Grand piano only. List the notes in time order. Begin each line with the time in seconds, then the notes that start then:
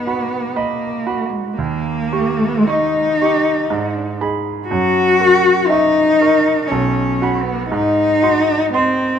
Already playing: G#2 F#4 D#5 B5
0.07 F#4 B5
0.56 D#5 B5
1.07 F#4 B5
1.58 D#2
2.13 G4 C#6
2.69 D#5 C#6
3.21 G4 C#6
3.70 G#2
4.21 G#4 B5
4.71 F#2
5.20 A#4 C#6
5.70 E5 C#6
6.21 A#4 C#6
6.71 B1
7.22 F#4 B5
7.72 G#2
8.23 F#4 C6
8.74 D#5 C6